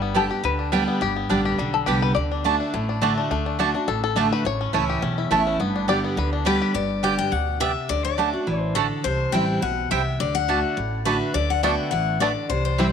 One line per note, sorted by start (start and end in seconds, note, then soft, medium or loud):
0.00 0.28 G1 medium
0.00 0.41 G2 medium
0.00 0.28 G3 medium
0.00 0.41 B3 medium
0.00 0.40 D4 medium
0.00 0.20 G4 medium
0.14 0.30 D3 loud
0.14 0.30 G3 medium
0.14 0.25 B3 medium
0.14 0.30 B3 loud
0.14 0.25 G4 medium
0.14 0.28 G4 loud
0.14 0.43 A4 medium
0.14 0.25 D5 medium
0.14 0.25 G5 loud
0.30 0.44 B3 soft
0.30 0.43 G4 medium
0.30 0.70 G4 medium
0.43 0.85 D2 medium
0.43 0.71 D3 loud
0.43 1.04 B4 loud
0.59 1.30 D4 medium
0.72 1.00 D3 medium
0.72 1.13 G3 medium
0.72 1.00 G3 loud
0.72 0.82 B3 medium
0.72 1.00 B3 loud
0.72 0.82 G4 medium
0.72 1.00 G4 loud
0.72 0.82 D5 loud
0.72 0.83 G5 loud
0.88 1.15 B3 medium
1.01 1.22 G1 loud
1.01 1.56 G2 medium
1.01 1.28 G4 medium
1.16 1.56 B3 medium
1.29 1.54 A1 medium
1.29 1.57 D3 medium
1.29 1.57 G3 loud
1.29 1.39 B3 medium
1.29 1.58 B3 medium
1.29 2.32 D4 medium
1.29 1.40 G4 medium
1.29 1.58 G4 loud
1.29 1.40 D5 loud
1.29 1.40 G5 loud
1.45 1.85 G4 medium
1.59 1.83 B1 medium
1.59 1.86 D3 loud
1.59 2.00 G3 medium
1.74 1.88 A4 medium
1.86 2.12 C2 medium
1.86 2.15 D3 loud
1.86 2.15 G3 medium
1.86 1.97 B3 medium
1.86 2.15 B3 loud
1.86 2.01 G4 medium
1.86 1.97 G4 medium
1.86 2.15 G4 loud
1.86 1.97 D5 loud
1.86 1.98 G5 loud
2.02 2.14 B4 loud
2.15 2.58 D2 medium
2.15 2.43 D3 medium
2.15 2.56 D5 loud
2.32 2.44 D4 medium
2.44 2.72 D3 medium
2.44 2.54 A3 medium
2.44 2.72 A3 loud
2.44 2.59 D4 medium
2.44 2.73 D4 loud
2.44 2.55 F#4 loud
2.44 2.73 F#4 medium
2.44 2.55 D5 loud
2.44 2.55 A5 loud
2.60 2.88 D4 medium
2.73 3.15 A1 medium
2.73 3.28 A2 loud
2.73 3.02 A3 medium
2.89 3.16 D4 medium
3.01 3.29 D3 loud
3.01 3.12 A3 medium
3.01 3.30 A3 medium
3.01 3.29 A3 loud
3.01 3.30 D4 loud
3.01 3.12 F#4 loud
3.01 3.30 F#4 loud
3.01 3.12 D5 loud
3.01 3.12 A5 loud
3.18 3.45 D4 medium
3.31 3.72 D2 medium
3.31 3.58 D3 loud
3.31 3.72 A3 medium
3.46 3.60 D4 medium
3.59 3.74 D3 medium
3.59 3.69 A3 medium
3.59 3.74 A3 loud
3.59 3.74 D4 loud
3.59 3.69 F#4 loud
3.59 3.86 F#4 medium
3.59 3.73 F#4 loud
3.59 3.69 D5 medium
3.59 3.69 A5 loud
3.74 4.14 D4 medium
3.74 3.88 D4 medium
3.74 3.87 F#4 medium
3.88 4.29 A1 medium
3.88 4.43 A2 loud
3.88 4.02 A4 medium
4.04 4.32 A4 loud
4.16 4.44 D3 loud
4.16 4.26 A3 loud
4.16 4.44 A3 loud
4.16 4.45 A3 medium
4.16 4.44 D4 loud
4.16 4.26 F#4 medium
4.16 4.44 F#4 loud
4.16 4.26 D5 medium
4.16 4.27 A5 loud
4.33 4.45 B4 loud
4.45 4.66 A1 medium
4.45 5.00 A2 medium
4.45 4.74 C#5 loud
4.61 5.00 C#4 medium
4.73 4.98 C#2 medium
4.73 5.01 E3 medium
4.73 4.83 A3 medium
4.73 5.01 A3 medium
4.73 5.02 C#4 loud
4.73 4.84 E4 loud
4.73 5.15 E4 medium
4.73 5.02 E4 loud
4.73 4.84 C#5 medium
4.73 4.84 A5 loud
4.90 5.29 G4 medium
5.02 5.27 B1 medium
5.02 5.57 E2 medium
5.02 5.44 C#4 medium
5.18 5.57 E4 medium
5.30 5.55 A1 medium
5.30 5.58 E3 loud
5.30 5.41 A3 medium
5.30 5.59 A3 loud
5.30 5.60 A3 medium
5.30 5.59 C#4 loud
5.30 5.41 E4 loud
5.30 5.59 E4 loud
5.30 5.41 C#5 medium
5.30 5.41 A5 loud
5.47 5.60 C#4 medium
5.59 6.01 G1 medium
5.59 6.15 G2 loud
5.59 6.01 B3 medium
5.76 5.89 D4 medium
5.88 6.16 D3 medium
5.88 6.16 G3 medium
5.88 5.98 B3 medium
5.88 6.16 B3 medium
5.88 5.98 G4 loud
5.88 6.16 G4 loud
5.88 5.99 D5 loud
5.88 6.18 D5 loud
5.88 5.99 G5 loud
6.04 6.44 B3 medium
6.17 6.59 D2 medium
6.17 6.44 D3 loud
6.17 6.32 B4 loud
6.33 6.72 D4 medium
6.45 6.73 D3 loud
6.45 6.73 G3 loud
6.45 6.56 B3 loud
6.45 6.74 B3 loud
6.45 6.56 G4 medium
6.45 6.74 G4 loud
6.45 6.60 G4 medium
6.45 6.74 B4 loud
6.45 6.56 D5 loud
6.45 6.56 G5 medium
6.62 6.75 G4 medium
6.74 7.16 G1 medium
6.74 7.29 G2 medium
6.74 7.01 D5 medium
7.03 7.31 D3 medium
7.03 7.31 G3 medium
7.03 7.13 B3 medium
7.03 7.31 B3 loud
7.03 7.13 G4 medium
7.03 7.31 G4 medium
7.03 7.13 D5 medium
7.03 7.17 G5 medium
7.03 7.14 G5 medium
7.19 7.32 G5 loud
7.32 7.74 D2 medium
7.32 7.60 B2 medium
7.32 7.60 F#5 loud
7.60 7.88 C3 loud
7.60 7.70 B3 medium
7.60 7.71 G4 loud
7.60 7.71 D5 medium
7.60 7.90 E5 loud
7.60 7.71 G5 medium
7.89 8.31 D2 medium
7.89 8.17 D3 medium
7.89 8.03 D5 loud
8.05 8.60 D5 medium
8.18 8.33 D3 medium
8.18 8.28 A3 medium
8.18 8.33 A3 medium
8.18 8.34 D4 medium
8.18 8.28 F#4 medium
8.18 8.32 F#4 loud
8.18 8.28 D5 medium
8.18 8.29 A5 loud
8.33 8.47 D4 soft
8.33 8.47 F#4 medium
8.47 8.89 A1 medium
8.47 8.75 E3 medium
8.60 8.78 C5 medium
8.75 9.03 D3 loud
8.75 8.86 A3 loud
8.75 8.86 F#4 loud
8.75 9.05 A4 loud
8.75 8.86 D5 loud
8.75 8.86 A5 medium
9.04 9.26 C2 medium
9.04 9.60 C3 medium
9.04 9.31 C5 loud
9.32 9.58 A1 medium
9.32 9.61 E3 medium
9.32 9.61 G3 medium
9.32 9.43 C4 medium
9.32 9.61 C4 loud
9.32 9.43 E4 medium
9.32 9.62 E4 loud
9.32 9.44 C5 loud
9.32 9.60 G5 loud
9.32 9.44 G5 loud
9.62 9.87 B1 medium
9.62 9.90 B2 loud
9.62 9.89 F#5 loud
9.91 10.16 C2 medium
9.91 10.19 C3 loud
9.91 10.01 C4 medium
9.91 10.01 E4 loud
9.91 10.01 C5 loud
9.91 10.18 E5 loud
9.91 10.01 G5 loud
10.20 10.62 D2 medium
10.20 10.47 D3 medium
10.20 10.34 D5 loud
10.35 11.02 F#5 loud
10.48 10.76 D3 medium
10.48 10.58 A3 medium
10.48 10.76 A3 medium
10.48 10.76 D4 medium
10.48 10.58 F#4 medium
10.48 10.77 F#4 loud
10.48 10.59 D5 medium
10.48 10.59 A5 medium
10.77 11.19 A1 medium
10.77 11.32 A2 loud
11.05 11.33 D3 loud
11.05 11.16 A3 medium
11.05 11.33 A3 medium
11.05 11.34 D4 loud
11.05 11.16 F#4 medium
11.05 11.34 F#4 loud
11.05 11.32 B4 medium
11.05 11.16 D5 loud
11.05 11.16 A5 medium
11.34 11.76 D2 medium
11.34 11.62 D3 medium
11.34 11.50 D5 loud
11.50 11.63 F#5 medium
11.63 11.91 D3 medium
11.63 11.91 A3 medium
11.63 11.70 A3 medium
11.63 11.73 B3 medium
11.63 11.91 B3 medium
11.63 11.71 B3 medium
11.63 11.71 D4 medium
11.63 11.73 F#4 loud
11.63 11.91 F#4 loud
11.63 11.73 D5 medium
11.63 11.90 G5 loud
11.63 11.74 A5 medium
11.91 12.34 A1 medium
11.91 12.20 E3 medium
11.91 12.18 F#5 medium
12.20 12.48 D3 medium
12.20 12.28 A3 medium
12.20 12.31 B3 loud
12.20 12.28 B3 medium
12.20 12.28 D4 medium
12.20 12.31 F#4 medium
12.20 12.47 D5 medium
12.20 12.31 D5 loud
12.20 12.31 A5 loud
12.49 12.91 C2 loud
12.49 12.92 C3 medium
12.49 12.64 C5 loud
12.65 12.92 C5 medium
12.78 12.92 E3 medium
12.78 12.92 G3 loud
12.78 12.86 G3 medium
12.78 12.88 C4 medium
12.78 12.92 C4 medium
12.78 12.86 C4 medium
12.78 12.88 E4 medium
12.78 12.92 E4 loud
12.78 12.86 E4 medium
12.78 12.89 C5 medium
12.78 12.89 G5 medium